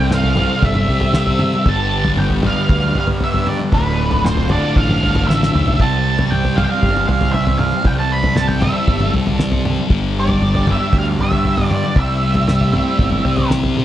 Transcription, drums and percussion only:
0.11 snare, mid tom
0.24 floor tom
0.36 floor tom, mid tom, high conga, low conga
0.62 kick, floor tom
0.74 mid tom, high conga
0.88 floor tom
1.00 floor tom, low conga
1.13 snare, floor tom
1.27 floor tom
1.39 mid tom, low conga
1.53 high conga
1.66 kick, floor tom
2.05 floor tom, high conga
2.17 mid tom
2.30 floor tom
2.43 floor tom, mid tom, high conga, low conga
2.69 kick, floor tom
2.82 high conga
2.95 floor tom
3.08 floor tom
3.20 floor tom
3.34 floor tom
3.47 mid tom, low conga
3.59 high conga
3.72 kick, floor tom
4.11 floor tom, high conga
4.25 snare, mid tom
4.37 floor tom
4.49 floor tom, mid tom, low conga
4.76 kick, floor tom
4.88 mid tom, high conga
5.03 floor tom
5.15 floor tom, low conga
5.30 snare
5.41 snare, high conga
5.54 mid tom, low conga
5.66 floor tom, high conga
5.80 kick, floor tom
6.18 floor tom, high conga
6.32 mid tom
6.45 floor tom
6.58 floor tom, mid tom, high conga, low conga
6.83 kick, floor tom
6.96 high conga
7.09 floor tom
7.21 floor tom, low conga
7.34 floor tom
7.47 floor tom
7.59 mid tom, low conga
7.72 high conga
7.85 kick, floor tom
8.23 floor tom, high conga
8.36 snare, mid tom
8.49 floor tom
8.62 floor tom, mid tom, high conga, low conga
8.88 kick, floor tom
9.00 mid tom, high conga
9.14 floor tom
9.26 floor tom, low conga
9.39 snare, floor tom
9.52 floor tom
9.65 mid tom, low conga
9.76 high conga
9.90 kick, floor tom
10.27 floor tom, high conga
10.42 mid tom
10.55 floor tom
10.67 floor tom, mid tom, high conga, low conga
10.93 kick, floor tom
11.06 high conga
11.19 floor tom
11.32 floor tom, low conga
11.45 floor tom
11.58 floor tom
11.71 mid tom
11.83 high conga
11.96 kick, floor tom
12.34 floor tom, high conga
12.48 snare, mid tom
12.61 floor tom
12.74 floor tom, mid tom
12.99 kick, floor tom
13.10 mid tom, high conga
13.25 floor tom
13.36 floor tom, low conga
13.50 snare, floor tom
13.62 floor tom, high conga
13.75 high tom, low conga

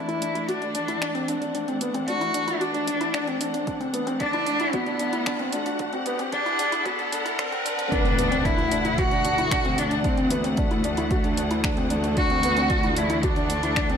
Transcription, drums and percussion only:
0.09 closed hi-hat
0.22 closed hi-hat
0.35 closed hi-hat
0.49 closed hi-hat
0.62 closed hi-hat
0.75 closed hi-hat
0.88 closed hi-hat
1.02 finger snap, closed hi-hat
1.15 closed hi-hat
1.28 closed hi-hat
1.42 closed hi-hat
1.55 closed hi-hat
1.68 closed hi-hat
1.81 closed hi-hat
1.94 closed hi-hat
2.08 closed hi-hat
2.21 closed hi-hat
2.34 closed hi-hat
2.48 closed hi-hat
2.61 closed hi-hat
2.74 closed hi-hat
2.87 closed hi-hat
3.01 closed hi-hat
3.14 finger snap, closed hi-hat
3.27 closed hi-hat
3.41 closed hi-hat
3.54 closed hi-hat
3.67 kick, closed hi-hat
3.81 closed hi-hat
3.94 closed hi-hat
4.07 closed hi-hat
4.20 kick, closed hi-hat
4.33 closed hi-hat
4.46 closed hi-hat
4.60 closed hi-hat
4.73 kick, closed hi-hat
4.86 closed hi-hat
4.99 closed hi-hat
5.13 closed hi-hat
5.26 finger snap, kick, closed hi-hat
5.39 closed hi-hat
5.53 closed hi-hat
5.66 closed hi-hat
5.79 kick, closed hi-hat
5.93 closed hi-hat
6.06 closed hi-hat
6.19 closed hi-hat
6.32 kick, closed hi-hat
6.46 closed hi-hat
6.59 closed hi-hat
6.72 closed hi-hat
6.86 kick, closed hi-hat
6.99 closed hi-hat
7.12 closed hi-hat
7.26 closed hi-hat
7.39 finger snap, kick, closed hi-hat
7.52 closed hi-hat
7.66 closed hi-hat
7.79 closed hi-hat
7.92 kick, closed hi-hat
8.05 closed hi-hat
8.19 closed hi-hat
8.32 closed hi-hat
8.45 kick, closed hi-hat
8.58 closed hi-hat
8.71 closed hi-hat
8.85 closed hi-hat
8.98 kick, closed hi-hat
9.11 closed hi-hat
9.25 closed hi-hat
9.38 closed hi-hat
9.51 finger snap, kick, closed hi-hat
9.65 closed hi-hat
9.78 closed hi-hat
9.91 closed hi-hat
10.04 kick, closed hi-hat
10.17 closed hi-hat
10.30 closed hi-hat
10.44 closed hi-hat
10.57 kick, closed hi-hat
10.71 closed hi-hat
10.84 closed hi-hat
10.97 closed hi-hat
11.11 kick, closed hi-hat
11.24 closed hi-hat
11.37 closed hi-hat
11.51 closed hi-hat
11.64 finger snap, kick, closed hi-hat
11.77 closed hi-hat
11.90 closed hi-hat
12.04 closed hi-hat
12.17 kick, closed hi-hat
12.30 closed hi-hat
12.43 closed hi-hat
12.57 closed hi-hat
12.70 kick, closed hi-hat
12.83 closed hi-hat
12.96 closed hi-hat
13.10 closed hi-hat
13.23 kick, closed hi-hat
13.36 closed hi-hat
13.50 closed hi-hat
13.63 closed hi-hat
13.76 finger snap, kick, closed hi-hat
13.90 closed hi-hat

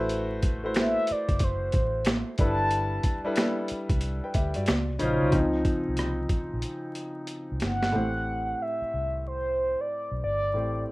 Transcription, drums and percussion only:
0.09 closed hi-hat
0.43 kick, closed hi-hat
0.74 finger snap, snare, closed hi-hat
1.07 closed hi-hat
1.29 kick, closed hi-hat
1.39 kick, closed hi-hat
1.72 kick, closed hi-hat
2.05 finger snap, snare, closed hi-hat
2.38 kick, closed hi-hat
2.71 closed hi-hat
3.03 kick, closed hi-hat
3.36 finger snap, snare, closed hi-hat
3.68 closed hi-hat
3.90 kick, closed hi-hat
4.01 closed hi-hat
4.34 kick, closed hi-hat
4.54 closed hi-hat
4.66 finger snap, snare, closed hi-hat
4.99 closed hi-hat
5.32 kick, closed hi-hat
5.65 kick, closed hi-hat
5.97 cross-stick, closed hi-hat
6.29 kick, closed hi-hat
6.62 closed hi-hat
6.95 closed hi-hat
7.27 closed hi-hat
7.60 snare, closed hi-hat
7.83 snare

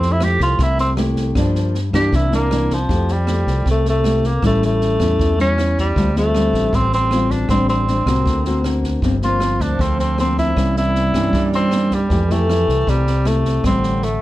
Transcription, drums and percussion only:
0.02 snare
0.20 cross-stick, snare
0.40 kick, snare
0.59 kick, snare
0.78 snare
0.97 cross-stick, snare
1.16 kick, snare
1.35 kick, cross-stick, snare
1.55 snare
1.75 snare
1.93 kick, cross-stick, snare
2.13 kick, snare
2.32 snare
2.51 cross-stick, snare
2.70 kick, snare
2.89 kick, snare
3.08 snare
3.27 cross-stick, snare
3.47 kick, snare
3.66 kick, snare
3.85 snare
4.04 cross-stick, snare
4.23 kick, snare
4.42 kick, cross-stick, snare
4.62 snare
4.81 snare
5.00 kick, cross-stick, snare
5.19 kick, snare
5.39 snare
5.58 cross-stick, snare
5.77 kick, snare
5.96 kick, snare
6.16 snare
6.35 cross-stick, snare
6.54 kick, snare
6.73 kick, snare
6.92 snare
7.11 cross-stick, snare
7.30 kick, snare
7.49 kick, cross-stick, snare
7.68 snare
7.88 snare
8.06 kick, cross-stick, snare
8.26 kick, snare
8.45 snare
8.64 cross-stick, snare
8.83 kick, snare
9.02 kick, snare
9.22 snare
9.40 cross-stick, snare
9.60 kick, snare
9.79 kick, snare
9.99 snare
10.18 cross-stick, snare
10.37 kick, snare
10.56 kick, cross-stick, snare
10.76 snare
10.95 snare
11.14 kick, cross-stick, snare
11.33 kick, snare
11.53 snare
11.71 cross-stick, snare
11.91 kick, snare
12.10 kick, snare
12.30 snare
12.49 cross-stick, snare
12.68 kick, snare
12.87 kick, snare
13.07 snare
13.25 cross-stick, snare
13.45 kick, snare
13.64 kick, cross-stick, snare
13.83 snare
14.02 snare

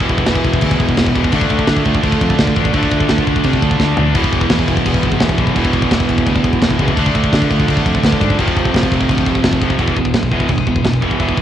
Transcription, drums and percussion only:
0.00 kick
0.09 kick, crash
0.18 kick
0.26 kick, snare, crash
0.35 kick
0.45 kick, crash
0.54 kick
0.61 kick, crash
0.71 kick
0.80 kick, crash
0.89 kick
0.97 kick, snare, crash
1.07 kick
1.16 kick, crash
1.24 kick
1.32 kick, crash
1.41 kick
1.50 kick, crash
1.59 kick
1.67 kick, snare, crash
1.77 kick
1.85 kick, crash
1.95 kick
2.03 kick, crash
2.12 kick
2.21 kick, crash
2.30 kick
2.38 kick, snare, crash
2.47 kick
2.56 kick, crash
2.65 kick
2.73 kick, crash
2.83 kick
2.91 kick, crash
3.01 kick
3.09 kick, snare, crash
3.18 kick
3.27 kick, crash
3.36 kick
3.44 kick, crash
3.53 kick
3.62 kick, crash
3.71 kick
3.80 kick, snare
3.97 floor tom
4.14 kick, crash
4.24 kick
4.32 kick, crash
4.41 kick
4.50 kick, snare, crash
4.59 kick
4.68 kick, crash
4.77 kick
4.86 kick, crash
4.94 kick
5.03 kick, crash
5.12 kick
5.20 kick, snare, crash
5.29 kick
5.38 kick, crash
5.47 kick
5.56 kick, crash
5.65 kick
5.73 kick, crash
5.82 kick
5.91 kick, snare, crash
6.00 kick
6.09 kick, crash
6.18 kick
6.27 kick, crash
6.36 kick
6.44 kick, crash
6.53 kick
6.62 kick, snare, crash
6.71 kick
6.79 kick, crash
6.88 kick
6.97 kick, crash
7.06 kick
7.15 kick, crash
7.24 kick
7.33 kick, snare, crash
7.42 kick
7.51 kick, crash
7.60 kick
7.68 kick, crash
7.77 kick
7.86 kick, crash
7.95 kick
8.04 kick, snare, crash
8.12 kick
8.21 kick, crash
8.30 kick
8.39 kick, crash
8.48 kick
8.57 kick, crash
8.65 kick
8.74 kick, snare, crash
8.83 kick
8.92 kick, crash
9.00 kick
9.09 kick, crash
9.18 kick
9.26 kick, crash
9.35 kick
9.44 kick, snare, crash
9.53 kick
9.62 kick, crash
9.70 kick
9.79 kick, china
9.88 kick
9.96 kick
10.05 kick
10.14 kick, snare, china
10.23 kick
10.31 kick
10.40 kick
10.48 kick, china
10.58 kick
10.67 kick
10.76 kick
10.85 kick, snare, china
10.94 kick
11.02 kick
11.11 kick
11.20 kick, china
11.29 kick
11.37 kick

